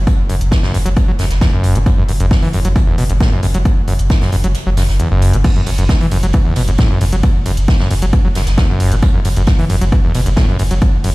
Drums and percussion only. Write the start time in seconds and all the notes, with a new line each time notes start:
0.07 kick, closed hi-hat
0.29 closed hi-hat, open hi-hat
0.41 closed hi-hat
0.51 kick, snare, closed hi-hat
0.63 snare
0.74 closed hi-hat, open hi-hat
0.86 closed hi-hat
0.96 kick, closed hi-hat
1.18 snare, closed hi-hat, open hi-hat
1.30 snare, closed hi-hat
1.41 kick, snare, closed hi-hat
1.63 closed hi-hat, open hi-hat
1.75 closed hi-hat
1.86 kick, closed hi-hat
2.08 closed hi-hat, open hi-hat
2.20 closed hi-hat
2.31 kick, snare, closed hi-hat
2.42 open hi-hat
2.53 closed hi-hat, open hi-hat
2.65 closed hi-hat
2.76 kick, closed hi-hat
2.98 closed hi-hat, open hi-hat
3.10 closed hi-hat
3.20 kick, snare, closed hi-hat
3.32 closed hi-hat
3.43 closed hi-hat, open hi-hat
3.54 closed hi-hat
3.65 kick, closed hi-hat
3.88 closed hi-hat, open hi-hat
3.99 closed hi-hat
4.10 kick, snare, closed hi-hat
4.21 snare, open hi-hat
4.32 closed hi-hat, open hi-hat
4.44 closed hi-hat
4.55 closed hi-hat
4.77 snare, closed hi-hat, open hi-hat
4.88 snare, open hi-hat
5.00 closed hi-hat
5.22 closed hi-hat, open hi-hat
5.33 closed hi-hat
5.44 kick, closed hi-hat, ride, crash
5.66 closed hi-hat, open hi-hat, ride
5.78 closed hi-hat
5.89 kick, snare, closed hi-hat, ride
6.01 open hi-hat
6.11 closed hi-hat, open hi-hat, ride
6.23 closed hi-hat
6.33 kick, closed hi-hat, ride
6.56 closed hi-hat, open hi-hat, ride
6.68 closed hi-hat
6.78 kick, snare, closed hi-hat, ride
6.91 closed hi-hat
7.01 closed hi-hat, open hi-hat, ride
7.12 closed hi-hat
7.23 kick, closed hi-hat, ride
7.46 closed hi-hat, open hi-hat, ride
7.57 closed hi-hat
7.68 kick, snare, closed hi-hat, ride
7.79 snare
7.91 closed hi-hat, open hi-hat, ride
8.02 closed hi-hat
8.13 kick, closed hi-hat, ride
8.35 snare, closed hi-hat, open hi-hat, ride
8.46 snare, closed hi-hat
8.57 kick, snare, closed hi-hat, ride
8.80 closed hi-hat, open hi-hat, ride
8.92 closed hi-hat
9.02 kick, closed hi-hat, ride
9.24 closed hi-hat, open hi-hat, ride
9.36 closed hi-hat
9.47 kick, snare, closed hi-hat
9.59 open hi-hat
9.69 closed hi-hat, open hi-hat, ride
9.81 closed hi-hat
9.92 kick, closed hi-hat, ride
10.14 closed hi-hat, open hi-hat, ride
10.26 closed hi-hat
10.36 kick, snare, closed hi-hat
10.49 closed hi-hat
10.59 closed hi-hat, open hi-hat, ride
10.71 closed hi-hat
10.81 kick, closed hi-hat
11.04 closed hi-hat, open hi-hat, ride